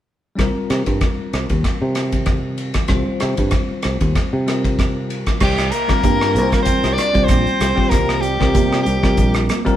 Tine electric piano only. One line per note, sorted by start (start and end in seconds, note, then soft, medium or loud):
0.35 2.84 G3 medium
0.35 2.85 C4 medium
0.35 2.86 F4 soft
0.35 2.86 A#4 medium
2.88 4.43 G3 medium
2.88 4.43 C4 medium
2.88 4.44 F4 medium
2.88 4.45 C5 medium
4.47 5.41 G3 soft
4.47 5.41 C4 soft
4.47 5.41 F4 soft
4.47 5.42 A#4 medium
5.88 6.45 G3 medium
5.88 6.45 C4 medium
5.88 6.45 F4 medium
5.88 6.46 A#4 medium
6.52 7.08 G3 medium
6.52 7.08 C4 medium
6.52 7.08 F4 medium
6.52 7.09 A#4 medium
7.13 7.70 G3 medium
7.13 7.70 C4 medium
7.13 7.71 F4 medium
7.13 7.71 C5 medium
7.75 8.33 G3 medium
7.75 8.33 C4 medium
7.75 8.33 F4 medium
7.75 8.33 G4 medium
8.39 8.96 G3 medium
8.39 8.96 C4 medium
8.39 8.96 F4 medium
8.39 8.97 A#4 medium
9.02 9.59 G3 medium
9.02 9.59 C4 medium
9.02 9.60 F4 medium
9.02 9.60 A#4 medium
9.65 9.77 G3 medium
9.65 9.77 C4 medium
9.65 9.77 F4 medium
9.65 9.77 A#4 medium